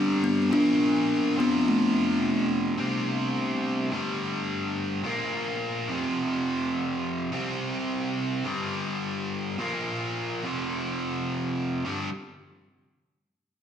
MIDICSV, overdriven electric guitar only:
0, 0, Header, 1, 2, 480
1, 0, Start_track
1, 0, Tempo, 566572
1, 450, Time_signature, 4, 2, 24, 8
1, 11539, End_track
2, 0, Start_track
2, 0, Title_t, "Overdriven electric guitar"
2, 0, Program_c, 0, 29
2, 0, Note_on_c, 0, 43, 83
2, 0, Note_on_c, 0, 50, 102
2, 0, Note_on_c, 0, 55, 118
2, 434, Note_off_c, 0, 50, 0
2, 435, Note_off_c, 0, 43, 0
2, 438, Note_on_c, 0, 46, 92
2, 445, Note_off_c, 0, 55, 0
2, 450, Note_on_c, 0, 53, 111
2, 462, Note_on_c, 0, 58, 109
2, 1146, Note_off_c, 0, 46, 0
2, 1151, Note_on_c, 0, 41, 90
2, 1152, Note_off_c, 0, 53, 0
2, 1158, Note_off_c, 0, 58, 0
2, 1164, Note_on_c, 0, 48, 97
2, 1168, Note_on_c, 0, 53, 96
2, 2340, Note_off_c, 0, 41, 0
2, 2340, Note_off_c, 0, 48, 0
2, 2349, Note_off_c, 0, 53, 0
2, 2351, Note_on_c, 0, 48, 80
2, 2359, Note_on_c, 0, 55, 89
2, 2371, Note_on_c, 0, 60, 94
2, 3300, Note_off_c, 0, 48, 0
2, 3304, Note_off_c, 0, 55, 0
2, 3310, Note_off_c, 0, 60, 0
2, 3312, Note_on_c, 0, 43, 80
2, 3325, Note_on_c, 0, 50, 83
2, 3332, Note_on_c, 0, 55, 105
2, 4261, Note_off_c, 0, 43, 0
2, 4264, Note_off_c, 0, 50, 0
2, 4267, Note_on_c, 0, 46, 89
2, 4271, Note_off_c, 0, 55, 0
2, 4280, Note_on_c, 0, 53, 78
2, 4287, Note_on_c, 0, 58, 90
2, 4979, Note_off_c, 0, 46, 0
2, 4981, Note_on_c, 0, 41, 81
2, 4985, Note_off_c, 0, 53, 0
2, 4989, Note_off_c, 0, 58, 0
2, 4996, Note_on_c, 0, 48, 76
2, 5003, Note_on_c, 0, 53, 91
2, 6177, Note_off_c, 0, 41, 0
2, 6184, Note_off_c, 0, 48, 0
2, 6188, Note_off_c, 0, 53, 0
2, 6202, Note_on_c, 0, 48, 83
2, 6207, Note_on_c, 0, 55, 81
2, 6217, Note_on_c, 0, 60, 105
2, 7148, Note_off_c, 0, 48, 0
2, 7150, Note_off_c, 0, 55, 0
2, 7151, Note_on_c, 0, 43, 80
2, 7155, Note_off_c, 0, 60, 0
2, 7163, Note_on_c, 0, 50, 92
2, 7169, Note_on_c, 0, 55, 95
2, 8104, Note_off_c, 0, 43, 0
2, 8110, Note_off_c, 0, 50, 0
2, 8112, Note_off_c, 0, 55, 0
2, 8115, Note_on_c, 0, 46, 82
2, 8132, Note_on_c, 0, 53, 83
2, 8140, Note_on_c, 0, 58, 90
2, 8826, Note_off_c, 0, 46, 0
2, 8834, Note_on_c, 0, 41, 65
2, 8835, Note_off_c, 0, 53, 0
2, 8839, Note_off_c, 0, 58, 0
2, 8847, Note_on_c, 0, 48, 87
2, 8851, Note_on_c, 0, 53, 83
2, 10028, Note_off_c, 0, 41, 0
2, 10034, Note_off_c, 0, 48, 0
2, 10037, Note_off_c, 0, 53, 0
2, 10038, Note_on_c, 0, 43, 82
2, 10044, Note_on_c, 0, 50, 84
2, 10049, Note_on_c, 0, 55, 89
2, 10236, Note_off_c, 0, 43, 0
2, 10238, Note_off_c, 0, 50, 0
2, 10241, Note_off_c, 0, 55, 0
2, 11539, End_track
0, 0, End_of_file